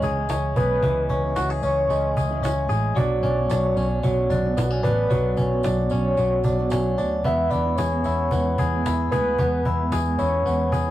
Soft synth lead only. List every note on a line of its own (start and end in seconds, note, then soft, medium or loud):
0.00 0.27 C#5 medium
0.56 1.33 B4 loud
1.63 2.39 C#5 loud
2.96 3.21 D5 loud
3.25 3.48 D5 loud
3.49 3.99 C#5 loud
4.04 4.53 C#5 medium
4.83 5.60 B4 loud
5.92 6.68 C#5 loud
7.25 7.52 E5 loud
7.50 7.77 D5 loud
7.75 8.01 C#5 medium
8.02 8.80 C#5 loud
9.11 9.88 B4 loud
10.18 10.91 C#5 loud